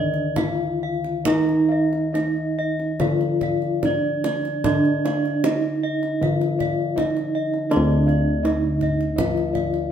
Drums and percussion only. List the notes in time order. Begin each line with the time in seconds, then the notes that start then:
0.14 kendang slap
0.36 kendang high, kendang low
1.04 kendang slap
1.25 kendang low
1.49 kendang slap
1.93 kendang slap
2.15 kendang high
2.79 kendang slap
3.00 kendang high, kendang low
3.21 kendang slap
3.41 kendang low
3.62 kendang slap
3.83 kendang high, kendang low
4.24 kendang high
4.45 kendang slap
4.64 kendang high, kendang low
4.85 kendang slap
5.06 kendang high
5.25 kendang slap
5.44 kendang high
6.03 kendang slap
6.23 kendang low
6.41 kendang slap
6.60 kendang low
6.98 kendang high, kendang low
7.17 kendang slap
7.54 kendang slap
7.71 kendang high
7.90 kendang slap
8.09 kendang slap
8.45 kendang slap, kendang high
8.81 kendang low
9.01 kendang slap
9.18 kendang high, kendang low
9.37 kendang slap
9.55 kendang slap, kendang low
9.74 kendang slap